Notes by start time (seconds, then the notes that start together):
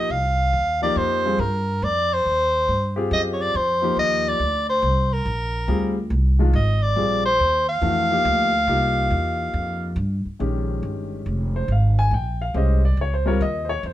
Already playing: D#5
0.10 C2 F5
0.53 D#2
0.82 F3 A#3 D#4 G4 D5
0.96 F2 C5
1.26 G3 C4 F4 G#4
1.39 G2 A#4
1.82 F2 D5
2.13 C5
2.25 D#2
2.68 G2
2.96 C4 F4 G4 G#4
3.11 F#2 D#5
3.33 C#5
3.41 D5
3.54 F2 C5
3.82 F3 A#3 D#4 G4
3.96 D#2 D#5
4.28 D5
4.39 D2
4.69 C5
4.82 C2
5.13 A#4
5.25 A#1
5.68 D2 G3 C4 F4 G#4
6.10 C2
6.39 D#3 G#3 D4 F4
6.53 G#1 D#5
6.82 D5
6.96 A#1 G3 C4 F4 G#4
7.25 C5
7.39 D#2
7.69 F5
7.81 F2 E3 A3 D4 F#4
8.10 F3 A#3 D#4 G4
8.25 D2
8.67 C2 A#3 D#4 F4 G4
9.10 E2
9.53 F2
9.96 G2
10.25 muted upright bass stroke
10.39 A#1 D#3 G#3 C#4 G4
10.83 G1
11.26 F1
11.56 C5
11.68 G#1 F5
11.99 G#5
12.11 A#1 G5
12.42 F5
12.54 C2 G#3 C#4 G4 C5 D#5
12.85 D5
12.97 C#2
13.01 C#5
13.14 C5
13.26 G3 C4 F4 A#4 C#5
13.41 D#2 D#5
13.65 C5
13.69 C#5
13.83 F2 C5